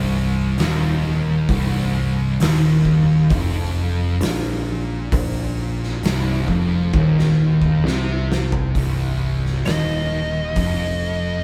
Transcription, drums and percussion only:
0.58 snare loud
0.58 open hi-hat medium
1.49 kick loud
1.49 open hi-hat medium
2.40 snare loud
2.40 open hi-hat medium
2.85 kick medium
3.30 kick loud
3.30 open hi-hat medium
4.21 snare loud
4.21 open hi-hat medium
5.12 kick loud
5.12 open hi-hat medium
5.83 snare soft
6.03 snare loud
6.03 open hi-hat medium
6.48 kick medium
6.93 kick loud
6.93 high tom medium
7.19 snare medium
7.62 kick medium
7.87 snare medium
8.32 snare loud
8.52 floor tom loud
8.75 kick loud
8.75 open hi-hat medium
9.46 snare soft
9.65 snare loud
9.65 open hi-hat medium
10.56 kick loud
10.56 open hi-hat medium

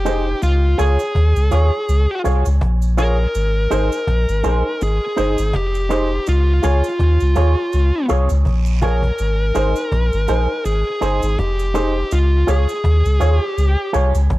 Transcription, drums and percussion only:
0.06 cabasa medium
0.42 cabasa medium
0.79 cabasa medium
0.99 cabasa medium
1.15 cajon bass loud
1.15 cajon slap loud
1.36 cabasa medium
1.51 cabasa medium
1.72 cajon slap soft
1.88 cajon slap soft
1.88 cabasa medium
2.24 cajon slap soft
2.24 cabasa medium
2.45 cajon slap soft
2.45 cabasa medium
2.61 cajon bass loud
2.61 cajon slap loud
2.82 cabasa medium
2.98 cabasa medium
3.34 cajon slap soft
3.34 cabasa medium
3.71 cabasa medium
3.92 cajon slap soft
3.92 cabasa medium
4.07 cajon bass loud
4.07 cajon slap loud
4.29 cabasa soft
4.44 cabasa medium
4.81 cabasa medium
5.17 cajon slap soft
5.17 cabasa medium
5.37 cajon slap soft
5.37 cabasa medium
5.53 cajon bass loud
5.53 cajon slap loud
5.75 cabasa medium
5.91 cabasa medium
6.26 cajon slap medium
6.26 cabasa medium
6.63 cabasa medium
6.84 cabasa medium
6.99 cajon bass loud
6.99 cajon slap loud
7.20 cabasa soft
7.36 cabasa medium
7.72 cajon slap soft
7.72 cabasa medium
8.08 cajon slap soft
8.08 cabasa medium
8.29 cabasa medium
8.45 cajon bass loud
8.45 cajon slap medium
8.45 long guiro medium
8.66 cabasa medium
8.82 cajon bass loud
8.82 cabasa medium
9.03 cajon bass loud
9.18 cajon slap medium
9.18 cabasa medium
9.55 cabasa medium
9.76 cabasa medium
9.92 cajon bass loud
9.92 cajon slap loud
10.12 cabasa medium
10.28 cabasa medium
10.65 cabasa medium
11.02 cabasa medium
11.22 cajon slap soft
11.22 cabasa medium
11.39 cajon bass loud
11.39 cajon slap loud
11.59 cabasa medium
11.75 cabasa medium
11.96 cajon slap soft
12.11 cajon slap medium
12.11 cabasa medium
12.48 cabasa medium
12.69 cajon slap soft
12.69 cabasa medium
12.84 cajon bass loud
12.84 cajon slap loud
13.05 cabasa medium
13.21 cabasa medium
13.41 cajon slap soft
13.57 cajon slap soft
13.57 cabasa medium
13.94 cabasa medium
14.15 cabasa medium
14.30 cajon bass loud
14.30 cajon slap loud

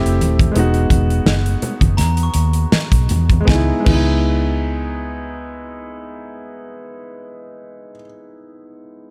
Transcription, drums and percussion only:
0.06 closed hi-hat medium
0.21 closed hi-hat medium
0.21 high conga medium
0.21 low conga medium
0.39 kick medium
0.39 closed hi-hat soft
0.39 high conga medium
0.56 closed hi-hat medium
0.56 muted conga soft
0.56 low conga medium
0.74 closed hi-hat soft
0.90 kick medium
0.90 closed hi-hat medium
0.90 muted conga soft
0.90 high conga soft
1.10 closed hi-hat medium
1.26 snare medium
1.26 muted conga soft
1.26 high conga medium
1.46 closed hi-hat soft
1.62 closed hi-hat medium
1.62 low conga medium
1.81 kick medium
1.81 closed hi-hat medium
1.81 high conga medium
1.98 snare soft
1.98 closed hi-hat medium
1.98 muted conga soft
2.17 closed hi-hat medium
2.34 closed hi-hat medium
2.34 muted conga soft
2.53 closed hi-hat soft
2.72 snare loud
2.72 high conga medium
2.92 kick medium
2.92 closed hi-hat medium
3.09 closed hi-hat medium
3.09 muted conga soft
3.09 high conga medium
3.09 low conga medium
3.30 kick medium
3.30 closed hi-hat soft
3.30 high conga medium
3.48 kick loud
3.48 snare medium
3.48 high conga medium
3.86 kick medium
3.86 crash medium
3.86 high conga medium

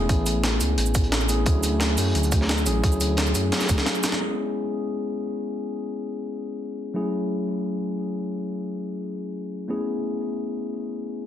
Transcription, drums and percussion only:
0.09 kick loud
0.09 closed hi-hat medium
0.26 closed hi-hat medium
0.26 shaker medium
0.44 snare loud
0.44 closed hi-hat medium
0.44 closed hi-hat loud
0.61 closed hi-hat medium
0.61 shaker medium
0.78 closed hi-hat medium
0.86 shaker soft
0.95 kick loud
0.95 closed hi-hat medium
0.95 shaker medium
1.04 closed hi-hat soft
1.12 snare loud
1.12 closed hi-hat medium
1.21 shaker soft
1.29 closed hi-hat medium
1.29 shaker medium
1.46 kick loud
1.46 closed hi-hat medium
1.63 closed hi-hat medium
1.63 shaker medium
1.80 snare loud
1.80 closed hi-hat medium
1.98 closed hi-hat loud
1.98 open hi-hat medium
1.98 shaker medium
2.15 closed hi-hat medium
2.24 closed hi-hat soft
2.24 shaker soft
2.32 kick loud
2.32 closed hi-hat medium
2.32 shaker medium
2.41 snare medium
2.49 snare loud
2.49 closed hi-hat medium
2.58 shaker soft
2.66 closed hi-hat medium
2.66 shaker medium
2.84 kick loud
2.84 closed hi-hat medium
2.92 shaker soft
3.01 closed hi-hat medium
3.01 shaker medium
3.17 snare loud
3.17 closed hi-hat medium
3.27 shaker soft
3.35 closed hi-hat medium
3.35 closed hi-hat loud
3.35 shaker medium
3.52 snare medium
3.52 closed hi-hat medium
3.56 snare medium
3.56 closed hi-hat medium
3.61 snare medium
3.61 closed hi-hat medium
3.61 shaker soft
3.65 snare loud
3.65 closed hi-hat medium
3.69 kick loud
3.69 closed hi-hat loud
3.69 closed hi-hat medium
3.69 shaker medium
3.78 snare medium
3.78 closed hi-hat soft
3.86 snare loud
3.86 snare medium
3.86 closed hi-hat medium
3.95 shaker soft
4.04 snare loud
4.04 snare medium
4.04 closed hi-hat medium
4.04 shaker medium
4.12 snare medium

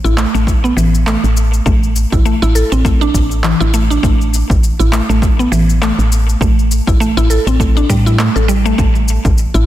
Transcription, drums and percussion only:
0.05 cabasa soft
0.18 clap medium
0.18 cabasa medium
0.35 cabasa soft
0.47 kick loud
0.47 cabasa soft
0.65 cabasa soft
0.78 cabasa medium
0.95 cabasa soft
1.07 clap medium
1.07 cabasa soft
1.24 cabasa soft
1.37 cabasa medium
1.54 cabasa soft
1.66 kick loud
1.66 cabasa soft
1.83 cabasa soft
1.96 cabasa medium
2.12 kick loud
2.12 cabasa soft
2.26 cabasa soft
2.43 cabasa soft
2.56 cabasa medium
2.72 cabasa soft
2.85 kick loud
2.85 cabasa soft
3.02 cabasa soft
3.14 kick medium
3.14 cabasa medium
3.31 cabasa soft
3.44 clap medium
3.44 cabasa soft
3.61 cabasa soft
3.74 cabasa medium
3.91 cabasa soft
4.03 kick loud
4.03 cabasa soft
4.21 cabasa soft
4.34 cabasa medium
4.50 kick loud
4.50 cabasa soft
4.64 cabasa soft
4.80 cabasa soft
4.93 clap medium
4.93 cabasa medium
5.10 cabasa soft
5.22 kick loud
5.22 cabasa soft
5.40 cabasa soft
5.53 cabasa medium
5.70 cabasa soft
5.82 clap medium
5.82 cabasa soft
5.99 cabasa soft
6.12 cabasa medium
6.29 cabasa soft
6.41 kick loud
6.41 cabasa soft
6.59 cabasa soft
6.71 cabasa medium
6.87 kick loud
6.87 cabasa soft
7.01 cabasa soft
7.18 cabasa soft
7.31 cabasa medium
7.47 cabasa soft
7.60 kick loud
7.60 cabasa soft
7.77 cabasa soft
7.89 kick medium
7.89 cabasa medium
8.07 cabasa soft
8.19 clap medium
8.19 cabasa soft
8.36 cabasa soft
8.49 cabasa medium
8.66 cabasa soft
8.78 kick loud
8.78 cabasa soft
8.95 cabasa soft
9.08 cabasa medium
9.25 kick loud
9.25 cabasa soft
9.38 cabasa soft
9.55 cabasa soft

